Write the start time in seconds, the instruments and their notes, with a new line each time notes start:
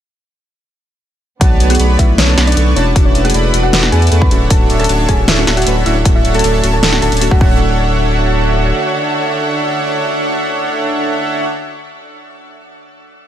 1.40 sub bass B1, synth keys D3 A3 B3 F#4, string section A3 B3, supersaw synth B3 B4 C#5 D5 A5, synth pluck F#4 F#5, kick, closed hi-hat
1.60 sub bass B1, supersaw synth B3 B4 C#5 D5 A5, closed hi-hat
1.69 synth keys D3 A3 B3 G#4, synth pluck F#4 F#5, closed hi-hat
1.75 closed hi-hat
1.80 sub bass B1, supersaw synth B3 B4 C#5 D5 B5, closed hi-hat
1.98 sub bass B1, synth keys D3 A3 B3 F#4, supersaw synth B3 B4, synth pluck E4 E5, kick, closed hi-hat
2.18 sub bass B1, supersaw synth B3 B4 C#5 D5 A5, synth pluck C#4 C#5, snare, closed hi-hat
2.27 synth keys D3 A3 B3 F#4
2.38 sub bass B1, supersaw synth B3 B4 C#5 D5 A5, snare, closed hi-hat
2.47 synth pluck D4 D5, closed hi-hat
2.52 synth keys D3, closed hi-hat
2.57 sub bass B1, synth keys A3 B3 A4, supersaw synth B3 B4 C#5 D5 C#6, closed hi-hat
2.75 sub bass E1, synth keys E3 A3 D4 F#4, string section E3 F#4 A4, synth pluck C#4 C#5, supersaw synth E4 B4 D5 F#5 A5, closed hi-hat
2.95 sub bass E1, synth keys E3 A3 D4 F#4, supersaw synth E4 B4 D5 F#5 A5, kick, closed hi-hat
3.05 synth pluck C#4 C#5
3.15 sub bass E1, supersaw synth E4 B4 D5 F#5 A5, closed hi-hat
3.24 synth keys E3 A3 D4 G#4, synth pluck F#4 F#5, closed hi-hat
3.30 closed hi-hat
3.34 sub bass E1, supersaw synth E4 B4 D5 F#5 B5, closed hi-hat
3.53 sub bass E1, synth keys E3 A3 D4 F#4, supersaw synth E4 B4 D5 F#5 B5, closed hi-hat
3.63 synth pluck F#4 F#5
3.73 sub bass E1, supersaw synth E4 B4 D5 F#5 A5, snare, closed hi-hat
3.82 synth keys E3 A3 D4 F#4, snare
3.92 sub bass E2, supersaw synth E4 B4 D5 F#5 A5, synth pluck G#4 G#5, closed hi-hat
4.02 closed hi-hat
4.07 synth keys E3, closed hi-hat
4.11 sub bass E2, synth keys A3 D4 A4, supersaw synth E4 B4 D5 F#5 C#6, closed hi-hat
4.21 synth pluck B4 B5, kick
4.30 sub bass D1, synth keys D3 A3 C#4 F#4, string section D3 C#5, supersaw synth D4 A4 C#5 E5 F#5, closed hi-hat
4.50 sub bass D1, synth keys D3 A3 C#4 F#4, harp C#4, supersaw synth D4 C#5, synth pluck A4 A5, kick, closed hi-hat
4.60 harp F#4
4.70 sub bass D1, supersaw synth D4 A4 C#5 E5 F#5, harp D4, closed hi-hat
4.79 synth keys D3 A3 C#4 A4, harp C#4, synth pluck A4 A5, closed hi-hat
4.84 closed hi-hat
4.89 sub bass D1, supersaw synth D4 A4 C#5 E5 A5, harp F#4, closed hi-hat
4.99 harp D4
5.08 sub bass D1, synth keys D3 A3 C#4 F#4, harp C#4, supersaw synth D4 A4 C#5 E5 A5, synth pluck G#4 G#5, kick, closed hi-hat
5.19 harp F#4
5.28 sub bass D1, supersaw synth D4 A4 C#5 E5 F#5, harp D4, synth pluck E4 E5, snare, closed hi-hat
5.37 synth keys D3 A3 C#4 F#4, harp C#4
5.47 sub bass D1, supersaw synth D4 A4 C#5 E5 F#5, harp F#4, snare, closed hi-hat
5.57 harp D4, synth pluck F#4 F#5, closed hi-hat
5.62 synth keys D3, closed hi-hat
5.66 sub bass D1, synth keys A3 C#4 B4, harp C#4, supersaw synth D4 A4 C#5 E5 B5, closed hi-hat
5.76 harp F#4
5.85 sub bass D1, synth keys D3 A3 C#4 F#4, harp D4, supersaw synth D4 A4 C#5 E5 F#5, synth pluck E4 E5, closed hi-hat
5.96 harp C#4
6.04 sub bass D1, synth keys D3 A3 C#4 F#4, harp F#4, supersaw synth C#5 E5 F#5, kick, closed hi-hat
6.15 harp D4, synth pluck E4 E5
6.25 sub bass D1, harp C#4, supersaw synth D4 A4 C#5 E5 F#5, closed hi-hat
6.33 synth keys D3 A3 C#4 A4, harp F#4, synth pluck A4 A5, closed hi-hat
6.39 closed hi-hat
6.44 sub bass D1, harp D4, supersaw synth D4 A4 C#5 E5 A5, closed hi-hat
6.54 harp C#4
6.62 sub bass D1, synth keys D3 A3 C#4 F#4, supersaw synth D4 A4 C#5 E5 A5, harp F#4, closed hi-hat
6.73 harp D4, synth pluck A4 A5
6.83 sub bass D1, harp C#4, supersaw synth D4 A4 C#5 E5 F#5, snare, closed hi-hat
6.91 synth keys D3 A3 C#4 F#4, harp F#4, snare
7.02 sub bass D1, supersaw synth D4 A4 C#5 E5 F#5, harp D4, synth pluck A4 A5, closed hi-hat
7.12 sub bass D1, harp C#4, supersaw synth D4 A4 C#5 E5 A5, closed hi-hat
7.17 synth keys D3, closed hi-hat
7.21 synth keys A3 C#4 F#4, harp F#4, closed hi-hat
7.30 sub bass D1, synth keys D3 A3 C#4 F#4, supersaw synth D4 A4 C#5 E5 B5, harp D4, synth pluck F#4 F#5, kick
7.38 sub bass D1, synth keys D3 A3, string section D3 F#4 C#5, supersaw synth D4 A4 C#5 E5 F#5, harp C#5, synth pluck F#5, kick
7.42 synth keys F#4 C#5